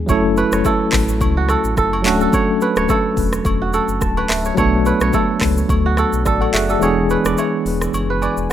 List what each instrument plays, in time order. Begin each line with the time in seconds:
0.06 sub bass F#1, tine electric piano F#3 A3 C#4 E4, kora C#5, kick, high agogo, shaker
0.11 tine electric piano A4
0.37 kora B4, high agogo, shaker
0.52 sub bass F#1, kora C#5, cross-stick, shaker
0.65 kora A4, kick, high agogo, low woodblock, shaker
0.92 sub bass A1, kick, cross-stick, clap, open hi-hat, shaker
1.09 shaker
1.21 sub bass C#2, kick, high agogo, shaker
1.37 kora F#4
1.49 kora A4, cross-stick, high agogo, shaker
1.64 sub bass A1, shaker
1.77 sub bass F#1, kora A4, kick, cross-stick, shaker
1.93 high agogo
2.02 sub bass D1, tine electric piano F#3 A3 C#4 D4, kora F#4, clap, open hi-hat, shaker
2.07 tine electric piano A4
2.21 kora A4, shaker
2.33 kora C#5, kick, high agogo, shaker
2.61 kora B4, high agogo, shaker
2.76 sub bass D1, kora C#5, cross-stick, shaker
2.89 kora A4, kick, high agogo, low woodblock, shaker
3.17 sub bass E1, kick, open hi-hat, shaker
3.33 cross-stick, shaker
3.45 sub bass E1, kick, high agogo, shaker
3.62 kora F#4
3.73 kora A4, high agogo, shaker
3.88 sub bass F#1, shaker
4.01 sub bass D1, tine electric piano A5, kick, cross-stick, shaker
4.17 kora B4, high agogo
4.29 sub bass D1, tine electric piano E5, cross-stick, clap, open hi-hat, shaker
4.45 kora C#5, shaker
4.55 sub bass B1, tine electric piano F#3 A3 B3 D4, kora C#5, kick, high agogo, shaker
4.60 tine electric piano A4
4.86 kora B4, high agogo, shaker
5.01 sub bass B1, kora C#5, cross-stick, shaker
5.13 kora A4, kick, high agogo, low woodblock, shaker
5.41 sub bass C#2, kick, cross-stick, clap, open hi-hat, shaker
5.57 shaker
5.69 sub bass D2, kick, high agogo, shaker
5.86 kora F#4
5.97 kora A4, cross-stick, high agogo, shaker
6.13 sub bass B1, shaker
6.25 sub bass A1, tine electric piano F#4 D5, kora A4, kick, cross-stick, shaker
6.41 tine electric piano A4 F#5, high agogo
6.53 sub bass F#1, kora F#4, tine electric piano G#4 E5, clap, open hi-hat, shaker
6.69 tine electric piano F#4 D5, kora A4, shaker
6.79 sub bass E1, tine electric piano E3 G#3 B3 D4, kora C#5, high agogo, shaker
6.84 tine electric piano G#4
7.10 kora B4, high agogo, shaker
7.25 sub bass E1, kora D5, cross-stick, shaker
7.38 kora C#5, high agogo, low woodblock, shaker
7.66 sub bass E1, open hi-hat, shaker
7.81 cross-stick, shaker
7.93 sub bass F#1, high agogo, shaker
8.10 kora B4
8.22 kora D5, tine electric piano G#5, high agogo, shaker
8.37 sub bass E1, shaker